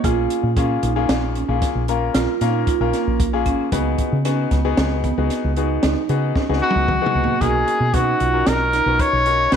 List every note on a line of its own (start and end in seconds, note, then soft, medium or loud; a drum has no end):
0.04 0.26 A#1 medium
0.04 0.48 A#3 medium
0.04 0.48 C#4 medium
0.04 0.48 F4 medium
0.04 0.39 F4 medium
0.04 0.48 G#4 medium
0.04 kick loud
0.04 closed hi-hat medium
0.30 closed hi-hat medium
0.43 0.76 A#2 medium
0.57 0.89 A#3 medium
0.57 0.89 C#4 medium
0.57 0.74 C#4 medium
0.57 0.90 F4 medium
0.57 0.90 G#4 medium
0.57 kick loud
0.57 closed hi-hat medium
0.83 1.05 A#1 medium
0.83 1.18 D#4 medium
0.83 closed hi-hat medium
0.96 1.40 A#3 medium
0.96 1.40 C#4 medium
0.96 1.40 F4 medium
0.96 1.40 G#4 medium
1.09 1.42 A#1 medium
1.09 snare loud
1.09 closed hi-hat medium
1.35 1.71 C#4 medium
1.35 closed hi-hat medium
1.48 1.60 A#1 medium
1.48 1.81 A#3 medium
1.48 1.81 C#4 medium
1.48 1.81 F4 medium
1.48 1.81 G#4 medium
1.62 kick loud
1.62 snare soft
1.62 closed hi-hat medium
1.75 2.08 A#1 medium
1.88 2.32 A#3 medium
1.88 2.32 C#4 medium
1.88 2.32 F4 medium
1.88 2.32 A#4 medium
1.88 closed hi-hat medium
2.14 2.26 A#1 medium
2.14 2.32 F4 medium
2.14 snare loud
2.14 closed hi-hat medium
2.41 2.63 A#2 medium
2.41 2.74 A#3 medium
2.41 2.74 C#4 medium
2.41 2.58 D#4 medium
2.41 2.74 F4 medium
2.41 2.74 A#4 medium
2.41 snare soft
2.41 closed hi-hat medium
2.67 2.85 F4 medium
2.67 kick loud
2.67 closed hi-hat medium
2.80 2.91 A#1 medium
2.80 3.24 A#3 medium
2.80 3.24 C#4 medium
2.80 3.24 F4 medium
2.80 3.24 A#4 medium
2.93 3.28 A#3 medium
2.93 snare soft
2.93 closed hi-hat medium
3.07 3.46 A#1 medium
3.20 kick loud
3.20 closed hi-hat medium
3.33 3.66 A#3 medium
3.33 3.66 C#4 medium
3.33 3.66 F4 medium
3.33 3.66 G#4 medium
3.46 3.57 G#1 medium
3.46 3.63 C#4 medium
3.46 kick medium
3.46 closed hi-hat medium
3.72 3.94 C#2 medium
3.72 4.16 B3 medium
3.72 4.07 B3 medium
3.72 4.16 D#4 medium
3.72 4.16 F#4 medium
3.72 4.16 G#4 medium
3.72 kick loud
3.72 closed hi-hat medium
3.98 kick medium
3.98 closed hi-hat medium
4.12 4.45 C#3 medium
4.25 4.58 B3 medium
4.25 4.43 C#4 medium
4.25 4.58 D#4 medium
4.25 4.58 F#4 medium
4.25 4.58 G#4 medium
4.25 snare soft
4.25 closed hi-hat medium
4.51 4.73 C#2 medium
4.51 4.86 B3 medium
4.51 kick medium
4.51 snare soft
4.51 closed hi-hat medium
4.65 5.08 B3 medium
4.65 5.08 D#4 medium
4.65 5.08 F#4 medium
4.65 5.08 G#4 loud
4.77 5.11 C#2 medium
4.77 snare loud
4.77 closed hi-hat medium
5.04 5.39 B3 medium
5.04 kick medium
5.04 closed hi-hat medium
5.18 5.28 C#2 medium
5.18 5.50 B3 medium
5.18 5.50 D#4 medium
5.18 5.50 F#4 medium
5.18 5.50 G#4 medium
5.30 snare soft
5.30 closed hi-hat medium
5.44 5.77 C#2 medium
5.56 6.01 B3 medium
5.56 5.74 D#4 medium
5.56 6.01 D#4 medium
5.56 6.01 F#4 medium
5.56 6.01 G#4 medium
5.56 closed hi-hat medium
5.83 5.94 C#2 medium
5.83 6.18 D#4 medium
5.83 snare loud
5.83 closed hi-hat medium
6.09 6.31 C#3 medium
6.09 6.42 B3 medium
6.09 6.42 D#4 medium
6.09 6.42 F#4 medium
6.09 6.42 G#4 medium
6.09 closed hi-hat medium
6.36 6.53 C#4 medium
6.36 kick loud
6.36 snare medium
6.49 6.60 C#2 medium
6.49 6.93 B3 medium
6.49 6.93 D#4 medium
6.49 6.93 F#4 medium
6.49 6.93 G#4 medium
6.49 snare soft
6.62 6.97 B3 medium
6.62 7.43 F#4 medium
6.71 high tom medium
6.76 6.97 C#2 medium
6.88 kick loud
6.88 mid tom medium
7.01 7.34 B3 medium
7.01 7.34 D#4 medium
7.01 7.34 F#4 medium
7.01 7.34 G#4 medium
7.06 mid tom medium
7.15 7.26 C#2 medium
7.15 7.32 A#3 medium
7.24 floor tom medium
7.41 7.63 B1 medium
7.41 7.85 C#4 medium
7.41 7.85 D#4 soft
7.41 7.85 F#4 medium
7.41 7.76 F#4 medium
7.41 7.96 G#4 medium
7.41 7.85 A#4 medium
7.41 kick medium
7.41 closed hi-hat medium
7.68 closed hi-hat medium
7.80 8.13 B2 medium
7.94 8.27 C#4 medium
7.94 8.11 D#4 medium
7.94 8.27 D#4 medium
7.94 8.49 F#4 medium
7.94 8.27 F#4 medium
7.94 8.27 B4 medium
7.94 kick medium
7.94 closed hi-hat medium
8.20 8.42 B1 medium
8.20 8.55 F4 medium
8.20 closed hi-hat medium
8.34 8.77 C#4 medium
8.34 8.77 D#4 medium
8.34 8.77 F#4 medium
8.34 8.77 A#4 medium
8.47 8.80 B1 medium
8.47 9.02 A#4 medium
8.47 snare medium
8.47 closed hi-hat medium
8.73 9.08 D#4 medium
8.73 snare soft
8.73 closed hi-hat medium
8.86 8.97 B1 medium
8.86 9.19 C#4 medium
8.86 9.19 D#4 medium
8.86 9.19 F#4 soft
8.86 9.19 B4 medium
8.99 9.55 C#5 medium
8.99 kick medium
8.99 closed hi-hat medium
9.13 9.46 B1 medium
9.26 9.56 C#4 medium
9.26 9.56 D#4 medium
9.26 9.56 F#4 soft
9.26 9.56 A#4 medium
9.26 closed hi-hat soft
9.52 9.56 B1 medium
9.52 9.56 F#4 medium
9.52 snare medium
9.52 closed hi-hat medium